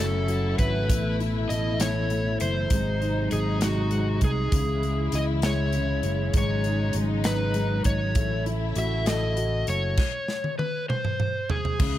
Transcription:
Already playing: fingered electric bass F#1, string section C#3 F#3 A3 E4, grand piano F#3 C#4
0.00 electric slide guitar A4
0.27 grand piano F#3, closed hi-hat
0.59 fingered electric bass G#1, electric slide guitar B4, kick, closed hi-hat
0.89 fingered electric bass A1, string section B2 E3, grand piano A3, kick, closed hi-hat
1.20 grand piano E4, closed hi-hat
1.49 fingered electric bass A1, grand piano A4, electric slide guitar D#5, closed hi-hat
1.80 grand piano E4, electric slide guitar C#5, snare, closed hi-hat
2.10 grand piano A3, closed hi-hat
2.40 fingered electric bass F#1, electric slide guitar C5, closed hi-hat
2.70 fingered electric bass G#1, string section C3 F#3 G#3 D#4, grand piano G#3, kick, closed hi-hat
3.01 grand piano D#4, closed hi-hat
3.31 fingered electric bass G#1, grand piano G#3, electric slide guitar G#4, closed hi-hat
3.60 grand piano D#4, snare, closed hi-hat
3.64 electric slide guitar F#4
3.90 grand piano G#3, closed hi-hat
4.21 fingered electric bass C2, electric slide guitar G#4, kick, closed hi-hat
4.52 fingered electric bass C#2, grand piano C#3, string section C#3 E3 E4, kick, closed hi-hat
4.83 grand piano G#3, closed hi-hat
5.12 fingered electric bass C#2, grand piano E4, electric slide guitar D#5, closed hi-hat
5.42 grand piano G#3, electric slide guitar C#5, snare, closed hi-hat
5.73 grand piano C#3, closed hi-hat
6.03 fingered electric bass F#1, closed hi-hat
6.34 fingered electric bass G#1, string section F#3 G#3 D#4, grand piano G#3, kick, closed hi-hat
6.38 electric slide guitar C#5
6.64 grand piano D#4, closed hi-hat
6.93 fingered electric bass G#1, grand piano G#3, closed hi-hat
7.24 grand piano D#4, electric slide guitar B4, snare, closed hi-hat
7.54 grand piano G#3, closed hi-hat
7.84 fingered electric bass G#1, electric slide guitar C#5, kick, closed hi-hat
8.15 fingered electric bass A1, string section A3 E4, grand piano A3, kick, closed hi-hat
8.46 grand piano E4, closed hi-hat
8.76 fingered electric bass A1, grand piano F#4, electric slide guitar E5, closed hi-hat
9.06 grand piano A4, electric slide guitar D#5, snare, closed hi-hat
9.36 grand piano F#4, closed hi-hat
9.67 fingered electric bass F#1, electric slide guitar C#5, closed hi-hat
9.97 kick, snare, crash
10.28 snare
10.44 high tom
10.59 electric slide guitar B4, high tom
10.89 electric slide guitar C5, mid tom
11.05 mid tom
11.20 mid tom
11.50 electric slide guitar G#4, floor tom
11.65 floor tom
11.79 fingered electric bass C#2, grand piano C#3, string section C#3 E3 G#3 E4, kick, crash

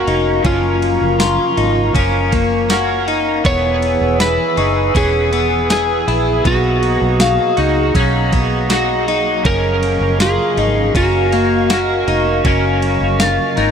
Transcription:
Already playing: clean electric guitar A#3 C#4 A#4, electric slide guitar F#4, ambient pad A#4 F5 A#5 C#6
0.07 fingered electric bass F1, clean electric guitar D#4, ride
0.43 fingered electric bass F#1, clean electric guitar F#2 C#3 F3 C#4, electric slide guitar F4, kick, ride
0.47 clean electric guitar A#3 C#4 A#4
0.82 ride
1.01 fingered electric bass F#1
1.20 clean electric guitar F4, snare, ride, tambourine
1.57 fingered electric bass G#1, clean electric guitar D#4, ride
1.93 fingered electric bass F#1, clean electric guitar F3 A#3 C#4, kick, ride
1.98 clean electric guitar A#4
2.32 clean electric guitar A#3, kick, ride
2.70 clean electric guitar A#3 C#4 F#4 A#4, snare, ride, tambourine
3.08 clean electric guitar D#4, ride
3.44 fingered electric bass E1, clean electric guitar E3 B3 E4 G#4, ambient pad G#4 B4 G#5 E6, electric slide guitar C#5, kick, ride
3.82 ride
4.01 fingered electric bass E1
4.20 clean electric guitar E4, electric slide guitar B4, snare, ride, tambourine
4.57 fingered electric bass F#1, clean electric guitar D#4 E4 G#4, celesta C#6, ride
4.61 clean electric guitar B3
4.94 fingered electric bass E1, clean electric guitar E3 B3 C#4 E4, electric slide guitar G#4, kick, ride
4.99 clean electric guitar G#4
5.32 clean electric guitar B3, ride
5.69 clean electric guitar E3 B3 E4 G#4, electric slide guitar G#4, snare, ride, tambourine
5.74 clean electric guitar G#4
6.08 fingered electric bass A#1, clean electric guitar E4, ride
6.44 fingered electric bass B1, clean electric guitar B2 F#3 A#3 B3 D#4 F#4, electric slide guitar F#4, ambient pad D#5 A#5 D#6, kick, ride
6.83 ride
7.02 fingered electric bass B1
7.20 clean electric guitar F5, snare, ride, tambourine
7.57 fingered electric bass C#2, clean electric guitar D#4 F#4, ride
7.62 clean electric guitar A#3
7.94 fingered electric bass B1, clean electric guitar F#3 A#3 C#4 D#4, kick, ride
7.99 clean electric guitar F#4
8.33 clean electric guitar B3, kick, ride
8.69 clean electric guitar F#3 A#3 D#4 F#4, snare, ride, tambourine
8.74 clean electric guitar F#4
9.08 clean electric guitar D#4, ride
9.43 fingered electric bass F#1, clean electric guitar F#2 C#3 F3 C#4, ambient pad A#4 F5 C#6, electric slide guitar A#4, kick, ride
9.48 clean electric guitar A#3 C#4 A#4
9.83 ride
10.01 fingered electric bass F#1
10.20 clean electric guitar F4, electric slide guitar G#4, snare, ride, tambourine
10.57 fingered electric bass G#1, clean electric guitar D#4, ride
10.95 fingered electric bass F#1, clean electric guitar A#3 C#4, electric slide guitar F#4, kick, ride
10.99 clean electric guitar A#4
11.32 clean electric guitar A#3, ride
11.70 clean electric guitar A#3 C#4 F#4 A#4, snare, ride, tambourine
12.08 fingered electric bass F1, clean electric guitar D#4, ride
12.44 fingered electric bass F#1, clean electric guitar F#2 C#3 A#3 C#4 A#4, kick, ride
12.82 ride
13.01 fingered electric bass F#1
13.20 clean electric guitar F5, snare, ride, tambourine
13.26 electric slide guitar F4
13.56 fingered electric bass G#1, clean electric guitar A#3 C#4 D#4 A#4, ride

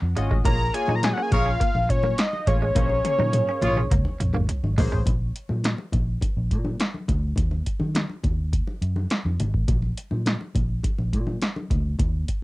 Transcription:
Already playing: analog synth lead F#5
0.02 fingered electric bass F2
0.16 fingered electric bass G#1, clean electric guitar G#3, analog polysynth C#4 F4 F#4 D#5, closed hi-hat
0.31 fingered electric bass A1, clean electric guitar G#3, kick
0.45 fingered electric bass A#1, analog polysynth A#3 F4 G#4 C#5, clean electric guitar A#3, analog synth lead A#5, kick, closed hi-hat, muted conga, low conga
0.74 analog polysynth A#3 F4 G#4 C#5, analog synth lead G#5, muted clean electric guitar stroke, closed hi-hat
0.88 fingered electric bass A#2, clean electric guitar D#4, high conga
0.95 analog synth lead A#5
1.03 analog synth lead G#5, snare, closed hi-hat, muted conga, high conga
1.13 analog synth lead F#5
1.17 clean electric guitar C#4
1.22 analog synth lead G#5
1.32 fingered electric bass A#1, horn section G#4 A#4 C#5, analog synth lead F5, muted clean electric guitar stroke, kick, closed hi-hat, low conga
1.46 clean electric guitar C#4
1.60 clean electric guitar A#3, kick, closed hi-hat
1.75 fingered electric bass A#1, muted conga
1.89 fingered electric bass A#2, analog synth lead C#5, muted clean electric guitar stroke, kick, closed hi-hat
2.03 clean electric guitar A#3, high conga
2.18 analog synth lead D#5, muted clean electric guitar stroke, snare, closed hi-hat
2.33 muted conga
2.47 fingered electric bass A1, clean electric guitar G#3, analog polysynth A#3 F4 G#4 C#5, analog synth lead C#5, kick, closed hi-hat
2.62 clean electric guitar G#3
2.75 fingered electric bass A#1, analog polysynth A#3 C#4 G#4 C5, clean electric guitar A#3, kick, closed hi-hat, high tom, muted conga, low conga
2.90 muted conga
3.05 analog polysynth A#3 C#4 G#4 C#5, muted clean electric guitar stroke, closed hi-hat, high tom
3.19 fingered electric bass A#2, clean electric guitar D#4, high tom, high conga
3.33 closed hi-hat, mid tom, muted conga, high conga
3.49 clean electric guitar C#4
3.62 fingered electric bass A#1, horn section F4 G#4 C#5, muted clean electric guitar stroke, closed hi-hat, mid tom, low conga
3.77 clean electric guitar C#4, mid tom
3.91 fingered electric bass C#2, clean electric guitar A#3, kick, closed hi-hat, mid tom
4.05 muted conga
4.20 fingered electric bass A#1, muted clean electric guitar stroke, closed hi-hat, mid tom
4.34 fingered electric bass G#1, clean electric guitar A#3, mid tom, high conga
4.49 muted clean electric guitar stroke, closed hi-hat, floor tom
4.63 fingered electric bass G#1, muted conga, high conga
4.78 fingered electric bass A#1, clean electric guitar G#3, analog polysynth A#3 C#4 G#4 C5, floor tom, open hi-hat, low conga
4.92 fingered electric bass A1, clean electric guitar G#3, floor tom
5.06 fingered electric bass A#1, kick, closed hi-hat, muted conga, low conga
5.36 closed hi-hat
5.49 fingered electric bass A#2, high conga
5.64 snare, closed hi-hat, high conga
5.78 muted conga
5.92 fingered electric bass A#1, kick, closed hi-hat, low conga
6.21 kick, closed hi-hat, muted conga
6.37 fingered electric bass A#1
6.51 fingered electric bass A#2, kick, closed hi-hat
6.65 high conga
6.80 snare, closed hi-hat, muted conga
6.94 high conga
7.08 fingered electric bass D2, kick, closed hi-hat, low conga
7.36 fingered electric bass D#2, kick, closed hi-hat, muted conga, low conga
7.51 muted conga
7.67 kick, closed hi-hat
7.80 fingered electric bass D#3, high conga
7.95 snare, closed hi-hat, muted conga, high conga
8.10 muted conga
8.24 fingered electric bass D#2, kick, closed hi-hat, low conga
8.53 kick, closed hi-hat
8.67 muted conga
8.82 fingered electric bass F#2, closed hi-hat
8.96 high conga
9.10 snare, closed hi-hat, muted conga
9.25 fingered electric bass F2, high conga
9.39 fingered electric bass G#1, closed hi-hat, low conga
9.54 fingered electric bass A1, kick
9.68 fingered electric bass A#1, kick, closed hi-hat, muted conga, low conga
9.82 muted conga
9.97 closed hi-hat
10.11 fingered electric bass A#2, high conga
10.26 snare, closed hi-hat, high conga
10.41 muted conga
10.55 fingered electric bass A#1, kick, closed hi-hat, low conga
10.83 kick, closed hi-hat, muted conga
10.98 fingered electric bass A#1, muted conga
11.13 fingered electric bass A#2, kick, closed hi-hat
11.27 high conga
11.42 snare, closed hi-hat, muted conga
11.56 muted conga, high conga
11.70 fingered electric bass D2, kick, closed hi-hat, low conga
11.99 fingered electric bass D#2, kick, closed hi-hat, low conga
12.28 kick, closed hi-hat

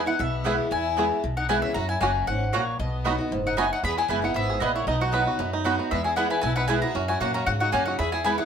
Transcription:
Already playing: steel-string acoustic guitar E2
0.06 steel-string acoustic guitar B3 E4, fiddle D#4, mandolin F#5
0.19 upright bass B1, steel-string acoustic guitar B2, fiddle B3, mandolin E5
0.44 steel-string acoustic guitar E3 G#3 B3 E4, mandolin B3 E4 B4 G#5, five-string banjo B3 E4 G#4
0.71 steel-string acoustic guitar E2, upright bass E2, fiddle E4, mandolin G#5
0.97 steel-string acoustic guitar E3 G#3 B3 E4, mandolin B3 E4 B4 G#5, five-string banjo B3 E4 G#4
1.24 upright bass B1, steel-string acoustic guitar B2
1.37 fiddle D#4, mandolin F#5
1.49 steel-string acoustic guitar E3 G#3 B3 E4, mandolin B3 E4 B4 G#5, five-string banjo B3 E4 G#4, fiddle E4
1.62 fiddle C#4, mandolin E5
1.74 upright bass F#2, steel-string acoustic guitar F#2, fiddle F#4, mandolin A#5
1.89 fiddle E4, mandolin G#5
2.00 upright bass F#1, steel-string acoustic guitar F#3 A#3 C#4 F#4, mandolin A#3 F#4 C#5 F#5 G#5, fiddle C#4, five-string banjo C#4 F#4
2.27 upright bass G#1, steel-string acoustic guitar G#2, fiddle C#4, mandolin F#5
2.53 upright bass A#1, steel-string acoustic guitar A#2, mandolin A#3 F#4 C#5 F#5, fiddle A#3, five-string banjo C#4 F#4
2.79 upright bass B1, steel-string acoustic guitar B2, fiddle B3, mandolin D#5
3.05 steel-string acoustic guitar F#3 B3 D#4 F#4, mandolin B3 F#4 D#5 B5, five-string banjo B3 D#4 F#4
3.18 steel-string acoustic guitar D#4 F#4
3.31 upright bass F#1, steel-string acoustic guitar G#2
3.46 fiddle D#4, mandolin F#5
3.57 steel-string acoustic guitar F#2, mandolin B3 F#4 D#5 G#5 B5, five-string banjo B3 D#4 F#4, fiddle D#4
3.71 fiddle D#4, mandolin F#5
3.83 upright bass E2, steel-string acoustic guitar E2, five-string banjo B3, fiddle G#4, mandolin B5
3.98 fiddle E4, five-string banjo G#4, mandolin G#5
4.08 upright bass F#1, steel-string acoustic guitar E3 G#3 B3 E4, mandolin B3 E4 B4 G#5, fiddle E4, five-string banjo E4
4.22 five-string banjo B3, steel-string acoustic guitar B3 E4, fiddle D#4, mandolin F#5
4.34 upright bass G#1, steel-string acoustic guitar G#2, fiddle B3, five-string banjo E4, mandolin E5
4.50 five-string banjo G#4
4.60 upright bass A#1, steel-string acoustic guitar A#2, mandolin B3 E4 B4 D#5 G#5, five-string banjo B3, fiddle B3
4.75 fiddle A#3, five-string banjo E4, mandolin C#5
4.87 upright bass B1, steel-string acoustic guitar B2, fiddle B3, five-string banjo D#4, mandolin D#5
5.01 fiddle D#4, five-string banjo F#4, mandolin F#5
5.12 steel-string acoustic guitar F#3 B3 D#4 F#4, mandolin B3 F#4 D#5 B5, five-string banjo B4
5.27 five-string banjo F#4
5.39 upright bass F#2, steel-string acoustic guitar F#2, five-string banjo B3
5.53 five-string banjo D#4
5.64 steel-string acoustic guitar F#3 B3 D#4 F#4, mandolin B3 F#4 D#5 B5, five-string banjo F#4
5.79 five-string banjo B3
5.91 steel-string acoustic guitar E2, upright bass E2, five-string banjo G#3, fiddle B3, mandolin E5
6.04 fiddle E4, five-string banjo G#4, mandolin G#5
6.16 steel-string acoustic guitar E3 G#3 B3 E4, mandolin B3 E4 B4 F#5 G#5, fiddle B3, five-string banjo B3
6.30 fiddle E4, five-string banjo B4, mandolin G#5
6.41 upright bass B1, steel-string acoustic guitar B2, fiddle E4, five-string banjo E4, mandolin G#5
6.56 fiddle D#4, five-string banjo B4, mandolin F#5
6.68 steel-string acoustic guitar E3 G#3 B3 E4, mandolin B3 E4 B4 G#5, fiddle E4, five-string banjo G#4
6.81 five-string banjo B3, steel-string acoustic guitar B3 E4, fiddle F#4, mandolin A#5
6.95 steel-string acoustic guitar F#2, upright bass F#2, five-string banjo C#4
7.08 fiddle E4, five-string banjo F#4, mandolin G#5
7.20 upright bass A#2, steel-string acoustic guitar F#3 A#3 C#4 F#4, mandolin A#3 F#4 C#5 F#5, fiddle C#4, five-string banjo F#4
7.34 five-string banjo C#4, fiddle F#4, mandolin A#5
7.46 upright bass G#2, steel-string acoustic guitar C#3, fiddle C#4, five-string banjo F#4, mandolin F#5
7.60 fiddle D#4, five-string banjo F#4, mandolin F#5
7.72 upright bass F#2, steel-string acoustic guitar F#3 A#3 C#4 F#4, mandolin A#3 F#4 C#5 F#5 G#5, fiddle C#4, five-string banjo C#4
7.85 steel-string acoustic guitar C#4 F#4, fiddle D#4, five-string banjo F#4, mandolin F#5
7.99 steel-string acoustic guitar E2, upright bass E2, five-string banjo E4, fiddle G#4, mandolin B5
8.12 fiddle E4, five-string banjo G#4, mandolin G#5
8.24 steel-string acoustic guitar E3 G#3 B3 E4, mandolin B3 E4 B4 G#5, fiddle E4, five-string banjo B4
8.38 steel-string acoustic guitar B3 E4, fiddle D#4, five-string banjo G#4, mandolin F#5

